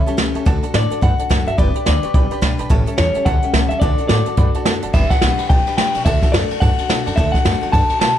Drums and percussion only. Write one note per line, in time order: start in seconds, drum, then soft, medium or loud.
0.07 closed hi-hat medium
0.18 snare loud
0.18 closed hi-hat medium
0.35 closed hi-hat medium
0.46 kick loud
0.46 closed hi-hat medium
0.63 closed hi-hat medium
0.74 snare loud
0.74 closed hi-hat medium
0.91 closed hi-hat medium
1.02 kick loud
1.02 closed hi-hat medium
1.19 closed hi-hat medium
1.30 kick medium
1.30 snare loud
1.30 closed hi-hat medium
1.47 closed hi-hat medium
1.58 kick loud
1.58 closed hi-hat medium
1.75 closed hi-hat medium
1.86 snare loud
1.86 closed hi-hat medium
2.03 closed hi-hat medium
2.14 kick loud
2.14 closed hi-hat medium
2.31 closed hi-hat medium
2.42 kick medium
2.42 snare loud
2.42 closed hi-hat medium
2.59 closed hi-hat medium
2.70 kick loud
2.70 closed hi-hat medium
2.87 closed hi-hat medium
2.98 snare loud
2.98 closed hi-hat medium
3.15 closed hi-hat medium
3.26 kick loud
3.26 closed hi-hat medium
3.43 closed hi-hat medium
3.54 kick medium
3.54 snare loud
3.54 closed hi-hat medium
3.70 closed hi-hat medium
3.81 kick loud
3.81 closed hi-hat medium
3.98 closed hi-hat medium
4.09 snare loud
4.09 closed hi-hat medium
4.26 closed hi-hat medium
4.37 kick loud
4.37 closed hi-hat medium
4.54 closed hi-hat medium
4.65 snare loud
4.65 closed hi-hat medium
4.82 closed hi-hat medium
4.94 kick loud
4.94 crash loud
5.11 kick medium
5.11 snare soft
5.11 ride medium
5.22 snare loud
5.22 ride medium
5.39 ride medium
5.50 kick loud
5.50 ride medium
5.67 ride medium
5.78 snare loud
5.78 ride medium
5.95 ride medium
6.05 kick loud
6.05 ride loud
6.22 kick medium
6.22 snare soft
6.22 ride medium
6.34 snare loud
6.34 ride medium
6.51 ride medium
6.62 kick loud
6.62 ride medium
6.79 ride medium
6.90 snare loud
6.90 ride medium
7.07 ride medium
7.18 kick loud
7.18 ride medium
7.34 kick medium
7.34 snare soft
7.34 ride medium
7.45 snare loud
7.45 ride medium
7.62 ride medium
7.73 kick loud
7.73 ride medium
7.90 ride medium
8.01 snare loud
8.01 ride medium